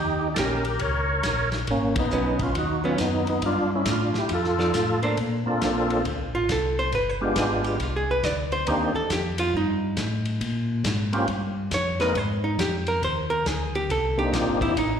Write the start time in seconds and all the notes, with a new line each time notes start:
Already playing: D#2 D#4 G4
0.34 A#1 D#3 A#3 A4 A#4, kick, snare, hi-hat pedal, ride
0.39 C#4 G4
0.65 ride
0.79 C#2 A#4 C#5, kick, ride
1.23 A#1, kick, snare, hi-hat pedal, ride
1.52 snare, ride
1.67 G#1 A#3 C#4, kick, ride
1.96 D#4, kick, ride
2.00 B3
2.11 B1 F#3 B3 C#4, hi-hat pedal
2.39 C#4 F4, kick, ride
2.55 D#2 D#4 F#4, kick, ride
2.84 F#3 B3 C#4 F4
2.97 F#2 B3 D4 D#4, kick, snare, hi-hat pedal, ride
3.27 B3 D#4, ride
3.42 G2, kick, ride
3.46 D4 F4
3.76 C#4 E4
3.86 A2, kick, snare, hi-hat pedal, ride
3.91 D4 F4
4.14 A2 E4, snare
4.18 G4
4.29 F2, kick, ride
4.33 F4 A4
4.44 snare
4.58 F3 D#4 A4 D5, snare
4.74 A2, kick, snare, hi-hat pedal, ride
5.03 A#3 D4 A4 C5, ride
5.17 A#2, kick, ride
5.46 A#2 A#3 C4 D4 F4 A4
5.61 A#1, kick, snare, hi-hat pedal, ride
5.90 ride
6.05 D2, kick, ride
6.19 A#1
6.34 A1 F4
6.49 C2 A4, kick, snare, hi-hat pedal, ride
6.79 C5
6.92 G1 B4, kick, ride
7.09 C5
7.21 G#3 B3 D4 F4 G4 B4
7.36 G#1 G#4, kick, snare, hi-hat pedal, ride
7.64 G4, ride
7.80 C2 F4, kick, ride
7.96 G#4
8.11 B4
8.23 D2 D5, kick, snare, hi-hat pedal, ride
8.52 C5, ride
8.67 D#2 A#3 C4 D4 D#4 G4 A#4, kick, ride
8.96 D#2 A4
9.10 F2 G4, kick, snare, hi-hat pedal, ride
9.38 F4, ride
9.54 G2 D#4, kick
9.97 A2, kick, snare, hi-hat pedal, ride
10.25 ride
10.41 A#2, kick, ride
10.84 G#2, kick, snare, hi-hat pedal, ride
11.12 A#3 C4 C#4 F4 G4, ride
11.28 G2, kick, ride
11.71 F2 C#5, kick, snare, hi-hat pedal, ride
11.99 G#3 A#3 C4 D#4 A#4 B4, snare, ride
12.15 G#2 C5, kick, ride
12.44 D#4
12.59 F2 G4, kick, snare, hi-hat pedal, ride
12.87 A#4, ride
13.02 D#2 C5, kick, ride
13.30 A#4
13.45 D2 G#4, kick, snare, hi-hat pedal, ride
13.75 G4, ride
13.89 C2 A4, kick, ride
14.17 A#3 C4 D4 D#4 G4
14.33 A#1 F4, kick, snare, hi-hat pedal, ride
14.48 G1
14.61 D#2 E4, kick, ride
14.76 A1 D#4, kick, ride